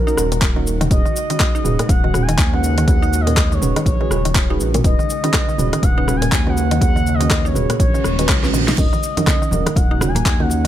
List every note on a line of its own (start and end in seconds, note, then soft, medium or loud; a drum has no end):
0.00 0.87 D#3 medium
0.00 0.87 A#3 medium
0.00 8.74 F#4 medium
0.00 0.67 A#4 medium
0.00 0.87 F#5 medium
0.07 0.15 C#4 medium
0.07 0.15 D#4 medium
0.07 0.16 D#4 medium
0.07 0.15 F#4 medium
0.07 0.15 A#4 loud
0.07 cabasa soft
0.17 0.88 D#1 medium
0.17 0.25 C#4 loud
0.17 0.25 D#4 loud
0.17 0.25 F#4 medium
0.17 0.25 A#4 loud
0.17 cross-stick medium
0.17 cabasa loud
0.32 0.37 A#2 loud
0.32 closed hi-hat medium
0.32 cabasa soft
0.42 kick loud
0.42 clap loud
0.42 closed hi-hat soft
0.42 cabasa medium
0.56 0.62 D#3 medium
0.56 0.88 C#4 loud
0.56 0.88 D#4 medium
0.56 0.88 F#4 medium
0.56 0.88 A#4 loud
0.67 cabasa loud
0.81 0.90 D#3 loud
0.81 closed hi-hat medium
0.81 mid tom loud
0.81 cabasa soft
0.90 1.03 D#1 loud
0.90 8.74 C#3 medium
0.90 8.74 G#3 medium
0.90 0.99 C#4 medium
0.90 4.80 D#4 medium
0.90 0.99 F#4 medium
0.90 0.99 G#4 medium
0.90 0.99 B4 medium
0.90 1.90 D#5 loud
0.90 kick loud
0.90 closed hi-hat soft
0.90 cabasa medium
1.05 1.15 D#3 medium
1.05 cabasa soft
1.16 cabasa medium
1.29 1.40 D#3 loud
1.29 1.62 C#4 medium
1.29 1.62 F#4 medium
1.29 1.62 G#4 medium
1.29 1.62 B4 medium
1.29 closed hi-hat medium
1.29 cabasa soft
1.40 kick loud
1.40 cross-stick medium
1.40 clap loud
1.40 closed hi-hat soft
1.40 cabasa medium
1.55 1.64 D#4 medium
1.55 cabasa soft
1.64 1.76 D#1 medium
1.64 2.00 C#4 medium
1.64 2.00 F#4 medium
1.64 2.00 G#4 medium
1.64 2.00 B4 loud
1.64 mid tom medium
1.64 cabasa loud
1.79 1.85 A#2 loud
1.79 cross-stick medium
1.79 closed hi-hat medium
1.79 cabasa soft
1.89 2.35 D#1 medium
1.89 2.24 F#5 loud
1.89 kick loud
1.89 closed hi-hat soft
1.89 cabasa medium
2.03 2.09 D#3 medium
2.03 2.12 C#4 medium
2.03 2.12 F#4 medium
2.03 2.12 G#4 medium
2.03 2.12 B4 loud
2.14 2.22 C#4 loud
2.14 2.22 F#4 medium
2.14 2.22 G#4 medium
2.14 2.22 B4 loud
2.14 cross-stick medium
2.14 mid tom medium
2.14 cabasa medium
2.22 2.54 G#5 loud
2.29 2.38 D#3 loud
2.29 closed hi-hat medium
2.29 cabasa soft
2.38 3.63 D#2 medium
2.38 kick loud
2.38 clap loud
2.38 closed hi-hat soft
2.38 cabasa medium
2.53 2.63 D#3 medium
2.53 2.85 C#4 medium
2.53 2.85 F#4 medium
2.53 2.85 G#4 medium
2.53 2.85 B4 loud
2.53 2.85 F#5 loud
2.64 cabasa medium
2.78 2.87 D#3 loud
2.78 closed hi-hat medium
2.78 cabasa soft
2.87 2.95 C#4 medium
2.87 2.95 F#4 medium
2.87 2.95 G#4 medium
2.87 2.95 B4 loud
2.87 3.22 F#5 loud
2.87 kick loud
2.87 closed hi-hat soft
2.87 cabasa soft
3.02 3.11 D#4 medium
3.02 cabasa soft
3.13 cabasa medium
3.21 3.55 D#5 loud
3.26 3.32 A#2 loud
3.26 3.59 C#4 medium
3.26 3.59 F#4 medium
3.26 3.59 G#4 medium
3.26 3.59 B4 medium
3.26 closed hi-hat medium
3.26 cabasa soft
3.37 kick loud
3.37 cross-stick medium
3.37 clap loud
3.37 closed hi-hat soft
3.37 cabasa soft
3.52 3.57 D#3 medium
3.52 3.86 C#5 medium
3.52 cabasa soft
3.61 3.73 D#1 medium
3.61 3.97 C#4 medium
3.61 3.97 F#4 medium
3.61 3.97 G#4 medium
3.61 3.97 B4 loud
3.61 mid tom medium
3.61 cabasa medium
3.76 3.86 D#3 loud
3.76 cross-stick medium
3.76 closed hi-hat medium
3.76 cabasa soft
3.86 3.98 A#1 loud
3.86 4.56 C#5 medium
3.86 kick loud
3.86 closed hi-hat soft
3.86 cabasa soft
4.00 4.10 D#3 medium
4.00 4.09 C#4 medium
4.00 4.09 F#4 medium
4.00 4.09 G#4 medium
4.00 4.09 B4 loud
4.10 4.57 D#1 medium
4.10 4.18 C#4 loud
4.10 4.18 F#4 medium
4.10 4.18 G#4 loud
4.10 4.18 B4 loud
4.10 cross-stick medium
4.10 cabasa medium
4.25 4.35 D#3 loud
4.25 closed hi-hat medium
4.25 cabasa soft
4.35 kick loud
4.35 clap loud
4.35 closed hi-hat soft
4.35 cabasa medium
4.49 4.82 C#4 medium
4.49 4.59 D#4 medium
4.49 4.82 F#4 medium
4.49 4.82 G#4 medium
4.49 4.82 B4 loud
4.60 4.81 A#1 medium
4.60 cabasa medium
4.74 4.80 A#2 loud
4.74 closed hi-hat medium
4.74 mid tom loud
4.74 cabasa soft
4.84 4.96 D#1 loud
4.84 4.92 C#4 medium
4.84 8.74 C#4 medium
4.84 4.92 F#4 medium
4.84 4.92 G#4 medium
4.84 4.92 B4 loud
4.84 5.85 D#5 loud
4.84 kick loud
4.84 closed hi-hat soft
4.84 cabasa soft
4.99 5.04 D#3 medium
4.99 cabasa soft
5.10 cabasa medium
5.23 5.33 D#3 loud
5.23 5.56 C#4 medium
5.23 5.56 F#4 medium
5.23 5.56 G#4 medium
5.23 5.56 B4 medium
5.23 closed hi-hat medium
5.23 cabasa soft
5.34 kick loud
5.34 cross-stick medium
5.34 clap loud
5.34 closed hi-hat soft
5.34 cabasa soft
5.49 5.58 D#3 medium
5.49 cabasa soft
5.58 5.70 D#1 medium
5.58 5.94 C#4 medium
5.58 5.94 F#4 medium
5.58 5.94 G#4 medium
5.58 5.94 B4 loud
5.58 mid tom medium
5.58 cabasa medium
5.73 5.82 D#3 loud
5.73 cross-stick medium
5.73 closed hi-hat medium
5.73 cabasa soft
5.83 6.29 D#1 medium
5.83 6.18 F#5 loud
5.83 kick loud
5.83 closed hi-hat soft
5.83 cabasa medium
5.97 6.05 C#4 medium
5.97 6.06 D#4 medium
5.97 6.05 F#4 medium
5.97 6.05 G#4 medium
5.97 6.05 B4 loud
6.07 6.15 C#4 loud
6.07 6.15 F#4 medium
6.07 6.15 G#4 medium
6.07 6.15 B4 loud
6.07 cross-stick medium
6.07 mid tom medium
6.07 cabasa medium
6.16 6.50 G#5 loud
6.22 6.27 A#2 loud
6.22 closed hi-hat medium
6.22 cabasa soft
6.32 7.56 D#2 medium
6.32 kick loud
6.32 clap loud
6.32 closed hi-hat soft
6.32 cabasa medium
6.46 6.52 D#3 medium
6.46 6.79 C#4 loud
6.46 6.79 F#4 medium
6.46 6.78 G#4 medium
6.46 6.79 B4 loud
6.46 6.81 F#5 loud
6.57 cabasa medium
6.71 6.81 D#3 loud
6.71 closed hi-hat medium
6.71 cabasa soft
6.81 6.89 C#4 medium
6.81 6.89 F#4 medium
6.81 6.89 G#4 medium
6.81 6.89 B4 loud
6.81 7.16 F#5 loud
6.81 kick loud
6.81 closed hi-hat soft
6.81 cabasa medium
6.96 7.05 D#3 medium
6.96 cabasa soft
7.07 cabasa medium
7.14 7.48 D#5 loud
7.20 7.30 D#3 loud
7.20 7.53 C#4 medium
7.20 7.53 F#4 medium
7.20 7.52 G#4 medium
7.20 7.53 B4 medium
7.20 closed hi-hat medium
7.20 cabasa soft
7.31 kick loud
7.31 cross-stick loud
7.31 clap loud
7.31 closed hi-hat soft
7.31 cabasa soft
7.45 7.54 D#4 medium
7.45 7.78 C#5 medium
7.45 cabasa soft
7.55 7.67 D#1 medium
7.55 7.90 C#4 medium
7.55 7.90 F#4 medium
7.55 7.90 G#4 medium
7.55 7.90 B4 loud
7.55 mid tom medium
7.55 cabasa medium
7.70 7.75 A#2 loud
7.70 cross-stick medium
7.70 closed hi-hat medium
7.70 cabasa soft
7.79 7.91 A#1 loud
7.79 8.49 C#5 medium
7.79 kick loud
7.79 closed hi-hat soft
7.79 reverse cymbal medium
7.79 cabasa medium
7.94 8.00 D#3 medium
7.94 8.02 C#4 medium
7.94 8.02 F#4 medium
7.94 8.02 G#4 medium
7.94 8.02 B4 loud
7.94 cabasa soft
8.04 8.30 D#1 medium
8.04 cross-stick medium
8.04 cabasa medium
8.19 8.28 D#3 medium
8.19 8.27 C#4 medium
8.19 8.27 F#4 medium
8.19 8.27 G#4 medium
8.19 8.27 B4 loud
8.19 closed hi-hat medium
8.19 cabasa soft
8.29 8.50 C#2 medium
8.29 kick loud
8.29 cross-stick medium
8.29 clap loud
8.29 closed hi-hat soft
8.29 cabasa medium
8.43 8.75 C#4 medium
8.43 8.49 C#4 medium
8.43 8.75 F#4 medium
8.43 8.75 G#4 medium
8.43 8.75 B4 loud
8.43 snare medium
8.43 cabasa soft
8.53 8.74 A#1 medium
8.53 8.67 D#3 medium
8.53 mid tom medium
8.53 cabasa medium
8.68 8.77 D#4 medium
8.68 snare medium
8.68 closed hi-hat medium
8.68 mid tom loud
8.68 cabasa soft
8.78 8.90 D#1 loud
8.78 10.67 D#3 medium
8.78 10.67 A#3 medium
8.78 8.86 C#4 medium
8.78 8.86 D#4 medium
8.78 8.86 F#4 medium
8.78 10.67 F#4 medium
8.78 8.86 A#4 loud
8.78 9.77 D#5 loud
8.78 10.67 F#5 medium
8.78 kick loud
8.78 closed hi-hat soft
8.78 crash medium
8.78 high conga medium
8.78 cabasa medium
8.93 8.98 D#3 medium
8.93 muted conga medium
8.93 cabasa soft
9.03 cabasa medium
9.17 9.27 D#3 loud
9.17 9.49 C#4 medium
9.17 9.49 D#4 medium
9.17 9.49 F#4 medium
9.17 9.49 A#4 medium
9.17 closed hi-hat medium
9.17 high conga medium
9.17 cabasa soft
9.27 kick loud
9.27 cross-stick medium
9.27 clap loud
9.27 closed hi-hat soft
9.27 muted conga soft
9.27 low conga loud
9.27 cabasa medium
9.42 9.51 D#3 medium
9.42 cabasa soft
9.51 9.63 D#1 loud
9.51 9.87 C#4 medium
9.51 9.87 D#4 medium
9.51 9.87 F#4 medium
9.51 9.87 A#4 loud
9.51 mid tom medium
9.51 high conga medium
9.51 cabasa loud
9.66 9.76 D#3 loud
9.66 cross-stick medium
9.66 closed hi-hat medium
9.66 muted conga medium
9.66 cabasa soft
9.76 10.22 D#1 medium
9.76 10.10 F#5 loud
9.76 kick loud
9.76 closed hi-hat soft
9.76 high conga medium
9.76 cabasa medium
9.91 9.99 C#4 medium
9.91 9.99 D#4 medium
9.91 10.00 D#4 medium
9.91 9.99 F#4 medium
9.91 9.99 A#4 medium
10.01 10.09 C#4 loud
10.01 10.09 D#4 medium
10.01 10.09 F#4 loud
10.01 10.09 A#4 loud
10.01 cross-stick loud
10.01 mid tom medium
10.01 low conga loud
10.01 cabasa medium
10.08 10.42 G#5 loud
10.15 10.21 A#3 medium
10.15 closed hi-hat medium
10.15 muted conga soft
10.15 high conga medium
10.15 cabasa soft
10.25 10.67 D#2 medium
10.25 kick loud
10.25 clap loud
10.25 closed hi-hat soft
10.25 cabasa medium
10.39 10.45 D#3 medium
10.39 10.67 C#4 loud
10.39 10.67 D#4 medium
10.39 10.67 F#4 medium
10.39 10.67 A#4 loud
10.39 10.67 F#5 loud
10.39 low conga medium
10.50 muted conga medium
10.50 cabasa medium